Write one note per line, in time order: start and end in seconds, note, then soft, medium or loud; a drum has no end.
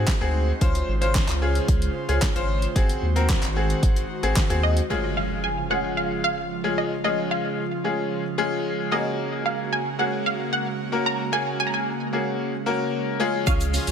0.00 4.86 G#3 medium
0.00 0.13 C4 medium
0.00 0.59 D#4 medium
0.00 0.13 F#4 medium
0.00 0.59 F#4 medium
0.00 0.14 G#4 medium
0.00 4.86 C5 medium
0.08 kick loud
0.08 snare medium
0.08 clap loud
0.21 0.52 D2 medium
0.21 0.50 C4 medium
0.21 0.50 F#4 medium
0.21 0.50 G#4 loud
0.61 0.82 C#2 loud
0.61 2.74 C#3 medium
0.61 0.90 C#4 medium
0.61 0.90 F4 medium
0.61 2.74 F4 medium
0.61 0.90 C5 loud
0.61 kick loud
0.61 closed hi-hat medium
0.75 closed hi-hat medium
0.88 1.19 G#1 loud
1.01 1.30 C#4 medium
1.01 1.30 F4 medium
1.01 1.30 C5 loud
1.01 closed hi-hat medium
1.15 kick loud
1.15 snare loud
1.15 clap loud
1.15 closed hi-hat medium
1.28 1.60 C#2 medium
1.28 clap medium
1.28 closed hi-hat soft
1.42 1.89 C#4 medium
1.42 1.89 F4 medium
1.42 1.89 G#4 medium
1.55 closed hi-hat medium
1.68 1.89 C#2 loud
1.68 kick loud
1.68 closed hi-hat medium
1.82 closed hi-hat medium
2.08 2.19 C#2 medium
2.08 2.28 C#4 medium
2.08 2.28 F4 medium
2.08 2.28 G#4 loud
2.08 closed hi-hat soft
2.22 kick loud
2.22 snare medium
2.22 clap loud
2.22 closed hi-hat medium
2.35 2.67 G#1 medium
2.35 2.64 C#4 loud
2.35 2.64 F4 medium
2.35 2.64 C5 loud
2.35 closed hi-hat medium
2.62 closed hi-hat medium
2.76 2.97 G#1 loud
2.76 4.88 D#3 medium
2.76 3.04 C4 loud
2.76 3.04 F#4 medium
2.76 4.88 F#4 medium
2.76 3.04 G#4 loud
2.76 kick loud
2.76 closed hi-hat medium
2.89 closed hi-hat medium
3.03 3.34 D#2 medium
3.16 3.44 C4 medium
3.16 3.44 F#4 medium
3.16 3.45 A#4 loud
3.16 closed hi-hat medium
3.29 kick loud
3.29 snare medium
3.29 clap loud
3.29 closed hi-hat medium
3.43 3.74 G#1 medium
3.43 clap medium
3.43 closed hi-hat soft
3.56 4.04 C4 medium
3.56 4.04 F#4 medium
3.56 4.04 G#4 medium
3.70 closed hi-hat medium
3.83 4.04 G#1 medium
3.83 kick loud
3.83 closed hi-hat medium
3.96 closed hi-hat medium
4.23 4.33 G#1 medium
4.23 4.42 C4 medium
4.23 4.42 F#4 medium
4.23 4.42 G#4 loud
4.23 closed hi-hat soft
4.36 kick loud
4.36 snare medium
4.36 clap loud
4.36 closed hi-hat medium
4.50 4.81 D#2 medium
4.50 4.78 C4 loud
4.50 4.78 F#4 medium
4.50 4.79 G#4 loud
4.50 closed hi-hat medium
4.63 5.19 D#5 medium
4.77 closed hi-hat medium
4.90 13.91 C#3 medium
4.90 8.88 F3 medium
4.90 5.47 G#3 medium
4.90 13.91 G#3 medium
4.90 5.47 C#4 medium
4.90 5.47 F4 medium
4.90 8.88 F4 medium
4.90 5.47 G#4 medium
4.90 impact medium
5.17 5.45 F5 medium
5.44 5.71 G#5 medium
5.70 6.37 G#3 medium
5.70 6.37 C#4 medium
5.70 6.37 F4 medium
5.70 6.37 G#4 medium
5.70 5.95 F#5 medium
5.97 6.09 F5 medium
6.24 6.79 F5 loud
6.64 6.92 G#3 medium
6.64 6.93 C#4 medium
6.64 6.93 F4 medium
6.64 6.93 G#4 medium
6.78 7.03 D#5 medium
7.04 7.61 G#3 medium
7.04 7.61 C#4 medium
7.04 7.61 F4 medium
7.04 7.61 G#4 medium
7.04 7.29 D#5 loud
7.31 8.88 F5 medium
7.84 8.22 G#3 medium
7.84 8.23 C#4 medium
7.84 8.23 F4 medium
7.84 8.23 G#4 medium
8.38 8.92 G#3 medium
8.38 8.90 C#4 medium
8.38 8.92 F4 medium
8.38 8.90 G#4 loud
8.91 9.77 A#3 medium
8.91 13.16 A#3 medium
8.91 9.77 C#4 medium
8.91 9.78 F#4 medium
8.91 13.16 F#4 medium
8.91 9.78 G#4 medium
8.91 9.47 D#5 loud
9.46 9.73 F5 medium
9.73 9.97 G#5 loud
9.99 10.65 A#3 medium
9.99 10.65 C#4 medium
9.99 10.65 F#4 medium
9.99 10.65 G#4 medium
9.99 10.27 F#5 loud
10.26 10.54 F5 loud
10.53 11.08 F#5 loud
10.92 11.21 A#3 medium
10.92 11.21 C#4 medium
10.92 11.21 F#4 medium
10.92 11.21 A#4 medium
11.06 11.18 A#5 loud
11.32 11.90 A#3 medium
11.32 11.90 C#4 medium
11.32 11.90 F#4 medium
11.32 11.90 G#4 medium
11.32 11.59 G#5 loud
11.60 11.66 G#5 loud
11.67 11.74 A#5 medium
11.74 13.16 G#5 loud
12.13 12.51 A#3 medium
12.13 12.51 C#4 medium
12.13 12.51 F#4 medium
12.13 12.51 G#4 medium
12.66 13.20 A#3 medium
12.66 13.18 C#4 medium
12.66 13.20 F#4 medium
12.66 13.20 A#4 loud
13.20 13.91 F3 medium
13.20 13.91 G#3 loud
13.20 13.91 C#4 medium
13.20 13.91 F4 medium
13.20 13.91 G#4 loud
13.47 13.78 C#2 loud
13.47 13.63 C#4 medium
13.47 13.63 F4 medium
13.47 13.63 G#4 medium
13.47 13.63 C#5 medium
13.47 13.91 F5 loud
13.47 kick loud
13.47 shaker medium
13.60 closed hi-hat medium
13.60 shaker medium
13.74 13.86 C#4 medium
13.74 13.86 F4 medium
13.74 13.86 G#4 medium
13.74 13.86 C#5 medium
13.74 open hi-hat medium
13.74 shaker medium
13.74 shaker soft
13.87 13.91 C#2 medium
13.87 13.91 C#4 medium
13.87 13.91 F4 medium
13.87 13.91 G#4 medium
13.87 13.91 C#5 medium
13.87 closed hi-hat medium
13.87 shaker medium